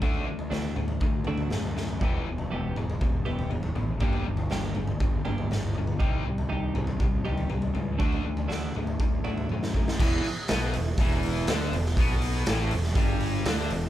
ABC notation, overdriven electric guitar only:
X:1
M:4/4
L:1/8
Q:1/4=120
K:Em
V:1 name="Overdriven electric guitar" clef=bass
[D,A,D] [D,A,] [D,A,] [D,A,] [D,A,] [D,A,] [D,A,] [D,A,] | [E,,B,,E,] [E,,B,,] [E,,B,,] [E,,B,,] [E,,B,,] [E,,B,,] [E,,B,,] [E,,B,,] | [G,,D,G,] [G,,D,] [G,,D,] [G,,D,] [G,,D,] [G,,D,] [G,,D,] [G,,D,] | [C,G,C] [C,G,] [C,G,] [C,G,] [C,G,] [C,G,] [C,G,] [C,G,] |
[D,A,D] [D,A,] [D,A,] [D,A,] [D,A,] [D,A,] [D,A,] [D,A,] | [E,,E,] z [B,,B,] E,, [E,,E,]2 [D,D] E,, | [B,,B,]2 [A,,A,] E,, [G,,G,]2 [D,D] E,, |]